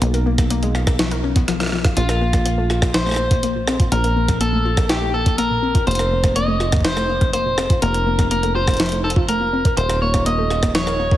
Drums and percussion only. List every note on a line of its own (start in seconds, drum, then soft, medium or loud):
0.02 closed hi-hat medium
0.14 closed hi-hat soft
0.38 kick loud
0.38 cross-stick medium
0.38 closed hi-hat medium
0.50 closed hi-hat medium
0.63 closed hi-hat soft
0.75 cross-stick soft
0.87 kick loud
0.87 cross-stick medium
0.99 snare loud
0.99 closed hi-hat medium
1.11 closed hi-hat soft
1.36 kick loud
1.36 closed hi-hat medium
1.48 cross-stick medium
1.48 closed hi-hat medium
1.60 cross-stick medium
1.60 closed hi-hat soft
1.63 cross-stick soft
1.66 cross-stick soft
1.69 cross-stick soft
1.72 cross-stick soft
1.75 cross-stick soft
1.78 cross-stick soft
1.82 cross-stick soft
1.85 kick loud
1.85 cross-stick medium
1.85 closed hi-hat medium
1.97 closed hi-hat medium
2.09 cross-stick medium
2.09 closed hi-hat soft
2.33 kick loud
2.33 cross-stick medium
2.33 closed hi-hat medium
2.46 closed hi-hat medium
2.70 cross-stick soft
2.82 kick loud
2.82 cross-stick medium
2.94 snare loud
2.94 closed hi-hat medium
3.06 cross-stick soft
3.09 cross-stick soft
3.11 cross-stick soft
3.14 cross-stick soft
3.16 cross-stick soft
3.31 kick loud
3.31 closed hi-hat medium
3.43 closed hi-hat medium
3.67 cross-stick medium
3.80 kick loud
3.80 closed hi-hat medium
3.92 closed hi-hat medium
4.04 closed hi-hat soft
4.28 kick loud
4.28 cross-stick medium
4.28 closed hi-hat medium
4.41 closed hi-hat medium
4.77 kick loud
4.77 cross-stick medium
4.77 closed hi-hat medium
4.89 snare loud
4.89 closed hi-hat medium
5.26 kick loud
5.26 closed hi-hat medium
5.38 closed hi-hat medium
5.75 kick loud
5.75 closed hi-hat medium
5.87 closed hi-hat soft
5.91 closed hi-hat soft
5.95 closed hi-hat medium
5.99 cross-stick medium
5.99 closed hi-hat soft
6.24 kick loud
6.24 cross-stick medium
6.24 closed hi-hat medium
6.36 closed hi-hat medium
6.60 cross-stick soft
6.72 kick loud
6.72 cross-stick medium
6.72 closed hi-hat medium
6.77 kick loud
6.81 kick medium
6.81 snare loud
6.81 closed hi-hat medium
6.97 cross-stick medium
7.21 kick loud
7.21 closed hi-hat medium
7.33 closed hi-hat medium
7.58 cross-stick medium
7.70 kick loud
7.70 closed hi-hat medium
7.82 closed hi-hat medium
7.94 closed hi-hat soft
8.19 kick loud
8.19 cross-stick soft
8.19 closed hi-hat medium
8.31 closed hi-hat medium
8.43 closed hi-hat soft
8.67 kick loud
8.67 cross-stick medium
8.67 closed hi-hat soft
8.71 closed hi-hat soft
8.74 closed hi-hat soft
8.77 snare loud
8.77 closed hi-hat soft
8.80 closed hi-hat medium
8.83 closed hi-hat soft
8.86 closed hi-hat soft
8.89 closed hi-hat soft
8.92 closed hi-hat soft
9.10 closed hi-hat medium
9.16 kick loud
9.29 closed hi-hat medium
9.65 kick loud
9.65 closed hi-hat medium
9.77 closed hi-hat medium
9.90 cross-stick medium
9.90 closed hi-hat soft
10.14 kick loud
10.14 cross-stick soft
10.14 closed hi-hat soft
10.26 closed hi-hat medium
10.50 cross-stick soft
10.63 kick loud
10.63 cross-stick medium
10.63 closed hi-hat soft
10.75 snare loud
10.75 closed hi-hat medium
10.87 cross-stick soft
11.11 kick loud